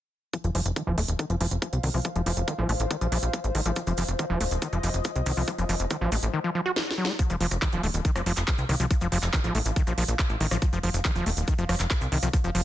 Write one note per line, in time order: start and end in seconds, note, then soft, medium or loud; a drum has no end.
0.33 0.37 F3 medium
0.33 6.33 F4 medium
0.33 kick loud
0.33 closed hi-hat medium
0.44 0.50 F1 medium
0.44 0.50 F3 medium
0.44 closed hi-hat soft
0.55 0.61 F1 loud
0.55 0.61 F3 loud
0.55 open hi-hat loud
0.66 0.72 F1 medium
0.66 closed hi-hat medium
0.76 0.82 D#3 medium
0.76 kick loud
0.76 closed hi-hat medium
0.87 0.93 D#1 medium
0.87 0.96 F3 loud
0.87 6.33 C5 medium
0.94 4.28 F5 medium
0.98 1.04 D#1 loud
0.98 1.01 A3 medium
0.98 open hi-hat loud
1.08 1.14 D#1 medium
1.08 closed hi-hat medium
1.19 1.25 D#3 medium
1.19 kick loud
1.19 closed hi-hat medium
1.30 1.36 F1 medium
1.30 1.36 F3 medium
1.30 closed hi-hat soft
1.41 1.47 F1 loud
1.41 1.47 F3 loud
1.41 open hi-hat loud
1.51 1.57 F1 medium
1.51 closed hi-hat medium
1.62 kick loud
1.62 closed hi-hat medium
1.73 1.79 C2 medium
1.73 closed hi-hat soft
1.83 1.89 C2 loud
1.83 1.90 D#3 medium
1.83 open hi-hat loud
1.94 2.00 C2 medium
1.94 2.00 F3 medium
1.94 open hi-hat medium
2.05 2.09 F3 medium
2.05 kick loud
2.05 closed hi-hat medium
2.16 2.22 F1 medium
2.16 2.22 F3 medium
2.16 closed hi-hat soft
2.26 2.32 F1 loud
2.26 2.32 F3 loud
2.26 open hi-hat loud
2.37 2.43 F1 medium
2.37 closed hi-hat medium
2.48 2.54 D#3 medium
2.48 kick loud
2.48 closed hi-hat medium
2.58 2.64 A1 medium
2.58 2.68 F3 loud
2.69 2.75 A1 loud
2.69 2.73 A3 medium
2.69 open hi-hat loud
2.80 2.86 A1 medium
2.80 closed hi-hat medium
2.91 2.97 D#3 medium
2.91 kick loud
2.91 closed hi-hat medium
3.01 3.07 A#1 medium
3.01 3.07 F3 medium
3.01 closed hi-hat soft
3.12 3.18 A#1 loud
3.12 3.18 F3 loud
3.12 open hi-hat loud
3.23 3.29 A#1 medium
3.23 closed hi-hat medium
3.33 kick loud
3.33 closed hi-hat medium
3.44 3.50 A1 medium
3.44 closed hi-hat soft
3.55 3.61 A1 loud
3.55 3.61 D#3 medium
3.55 open hi-hat loud
3.66 3.72 A1 medium
3.66 3.72 F3 medium
3.66 closed hi-hat medium
3.76 3.80 F3 medium
3.76 kick loud
3.76 closed hi-hat medium
3.76 cabasa medium
3.87 3.93 F1 medium
3.87 3.93 F3 medium
3.87 closed hi-hat soft
3.87 cabasa soft
3.97 4.04 F1 loud
3.97 4.04 F3 loud
3.97 open hi-hat loud
3.97 cabasa loud
4.08 4.14 F1 medium
4.08 closed hi-hat soft
4.08 cabasa soft
4.15 4.25 D#3 medium
4.15 6.33 D#5 medium
4.15 kick loud
4.15 closed hi-hat medium
4.15 cabasa soft
4.30 4.36 D#1 medium
4.30 4.39 F3 loud
4.41 4.47 D#1 loud
4.41 4.44 A3 medium
4.41 open hi-hat loud
4.41 cabasa medium
4.51 4.57 D#1 medium
4.51 closed hi-hat soft
4.51 cabasa soft
4.62 4.68 D#3 medium
4.62 kick loud
4.62 closed hi-hat medium
4.62 cabasa medium
4.73 4.79 F1 medium
4.73 4.79 F3 medium
4.73 closed hi-hat soft
4.83 4.89 F1 loud
4.83 4.90 F3 loud
4.83 open hi-hat loud
4.83 cabasa medium
4.94 5.00 F1 medium
4.94 closed hi-hat medium
4.94 cabasa soft
5.04 kick loud
5.04 closed hi-hat medium
5.04 cabasa medium
5.16 5.22 C2 medium
5.16 closed hi-hat soft
5.26 5.32 C2 loud
5.26 5.32 D#3 medium
5.26 open hi-hat loud
5.26 cabasa medium
5.37 5.43 C2 medium
5.37 5.43 F3 medium
5.37 open hi-hat medium
5.37 cabasa soft
5.48 5.51 F3 medium
5.48 kick loud
5.48 closed hi-hat medium
5.48 cabasa medium
5.58 5.64 F1 medium
5.58 5.65 F3 medium
5.58 closed hi-hat soft
5.58 cabasa soft
5.69 5.75 F1 loud
5.69 5.75 F3 loud
5.69 open hi-hat loud
5.69 cabasa loud
5.80 5.86 F1 medium
5.80 closed hi-hat medium
5.80 cabasa soft
5.90 5.97 D#3 medium
5.90 kick loud
5.90 closed hi-hat medium
5.90 cabasa soft
6.01 6.07 A1 medium
6.01 6.11 F3 loud
6.12 6.18 A1 loud
6.12 6.16 A3 medium
6.12 open hi-hat loud
6.12 cabasa medium
6.22 6.29 A1 medium
6.22 closed hi-hat medium
6.22 cabasa soft
6.33 6.40 D#3 medium
6.44 6.50 F3 medium
6.55 6.61 F3 medium
6.66 6.72 F#4 medium
6.76 snare medium
6.91 snare medium
6.98 7.10 F#3 medium
7.05 7.12 A3 medium
7.05 snare medium
7.19 7.23 F3 medium
7.19 kick loud
7.19 closed hi-hat medium
7.19 cabasa medium
7.30 7.36 F1 medium
7.30 7.36 F3 medium
7.30 closed hi-hat soft
7.30 cabasa soft
7.41 7.47 F1 loud
7.41 7.47 F3 loud
7.41 open hi-hat loud
7.51 7.57 F1 loud
7.51 cross-stick soft
7.51 closed hi-hat medium
7.51 cabasa medium
7.62 7.68 D#3 medium
7.62 kick loud
7.62 clap loud
7.62 closed hi-hat medium
7.62 cabasa medium
7.72 7.79 D#1 medium
7.72 7.82 F3 loud
7.72 closed hi-hat soft
7.72 cabasa soft
7.83 7.89 D#1 loud
7.83 7.87 A3 medium
7.83 open hi-hat loud
7.94 8.00 D#1 medium
7.94 closed hi-hat medium
7.94 cabasa medium
8.05 8.11 D#3 medium
8.05 kick loud
8.05 closed hi-hat medium
8.05 cabasa medium
8.16 8.22 F1 medium
8.16 8.22 F3 medium
8.16 cross-stick medium
8.16 closed hi-hat soft
8.16 cabasa soft
8.26 8.32 F1 loud
8.26 8.32 F3 loud
8.26 open hi-hat loud
8.32 12.64 F5 medium
8.37 8.43 F1 medium
8.37 clap soft
8.37 closed hi-hat medium
8.37 cabasa medium
8.47 kick loud
8.47 clap loud
8.47 closed hi-hat medium
8.47 cabasa medium
8.58 8.64 C2 medium
8.58 cabasa soft
8.69 8.75 C2 loud
8.69 8.75 D#3 medium
8.69 cross-stick soft
8.69 open hi-hat loud
8.80 8.86 C2 medium
8.80 8.86 F3 medium
8.80 closed hi-hat medium
8.80 cabasa medium
8.91 8.94 F3 medium
8.91 kick loud
8.91 closed hi-hat medium
8.91 cabasa medium
9.01 9.07 F1 medium
9.01 9.07 F3 medium
9.01 closed hi-hat soft
9.01 cabasa soft
9.12 9.18 F1 loud
9.12 9.18 F3 loud
9.12 open hi-hat loud
9.23 9.29 F1 medium
9.23 clap soft
9.23 closed hi-hat medium
9.23 cabasa medium
9.33 9.40 D#3 medium
9.33 kick loud
9.33 cross-stick medium
9.33 clap loud
9.33 closed hi-hat medium
9.33 cabasa medium
9.44 9.50 A1 medium
9.44 9.53 F3 loud
9.44 closed hi-hat soft
9.44 cabasa soft
9.55 9.61 A1 loud
9.55 9.59 A3 medium
9.55 open hi-hat loud
9.65 9.72 A1 medium
9.65 closed hi-hat medium
9.65 cabasa medium
9.76 9.82 D#3 medium
9.76 kick loud
9.76 closed hi-hat medium
9.76 cabasa medium
9.87 9.93 A#1 medium
9.87 9.93 F3 medium
9.87 cross-stick soft
9.87 closed hi-hat soft
9.87 cabasa soft
9.98 10.04 A#1 loud
9.98 10.04 F3 loud
9.98 open hi-hat loud
10.08 10.14 A#1 medium
10.08 closed hi-hat medium
10.08 cabasa medium
10.19 kick loud
10.19 clap loud
10.19 closed hi-hat medium
10.19 cabasa medium
10.30 10.36 A1 medium
10.30 cabasa soft
10.41 10.47 A1 loud
10.41 10.47 D#3 medium
10.41 open hi-hat loud
10.51 10.57 A1 medium
10.51 10.57 F3 medium
10.51 cross-stick medium
10.51 closed hi-hat medium
10.51 cabasa medium
10.62 10.66 F3 medium
10.62 kick loud
10.62 closed hi-hat medium
10.62 cabasa medium
10.73 10.79 F1 medium
10.73 10.79 F3 medium
10.73 closed hi-hat soft
10.73 cabasa soft
10.83 10.89 F1 medium
10.83 10.90 F3 loud
10.83 open hi-hat loud
10.94 11.00 F1 medium
10.94 closed hi-hat medium
10.94 cabasa medium
11.05 11.11 D#3 medium
11.05 kick loud
11.05 cross-stick soft
11.05 clap loud
11.05 closed hi-hat medium
11.05 cabasa medium
11.15 11.21 D#1 medium
11.15 11.25 F3 loud
11.15 closed hi-hat soft
11.15 cabasa soft
11.26 11.32 D#1 loud
11.26 11.30 A3 medium
11.26 open hi-hat loud
11.37 11.43 D#1 medium
11.37 closed hi-hat medium
11.37 cabasa medium
11.47 11.54 D#3 medium
11.47 kick loud
11.47 closed hi-hat medium
11.47 cabasa medium
11.58 11.64 F1 medium
11.58 11.65 F3 medium
11.58 closed hi-hat soft
11.58 cabasa soft
11.69 11.75 F1 loud
11.69 11.75 F3 loud
11.69 cross-stick medium
11.69 open hi-hat loud
11.80 11.86 F1 medium
11.80 clap soft
11.80 closed hi-hat medium
11.80 cabasa medium
11.91 kick loud
11.91 clap loud
11.91 closed hi-hat medium
11.91 cabasa medium
12.01 12.07 C2 medium
12.01 cabasa soft
12.12 12.18 C2 loud
12.12 12.18 D#3 medium
12.12 open hi-hat loud
12.23 12.29 C2 medium
12.23 12.29 F3 medium
12.23 cross-stick soft
12.23 closed hi-hat medium
12.23 cabasa medium
12.33 12.37 F3 medium
12.33 kick loud
12.33 closed hi-hat medium
12.33 cabasa medium
12.44 12.50 F1 medium
12.44 12.50 F3 medium
12.44 closed hi-hat soft
12.44 cabasa soft
12.55 12.61 F1 loud
12.55 12.61 F3 medium
12.55 open hi-hat loud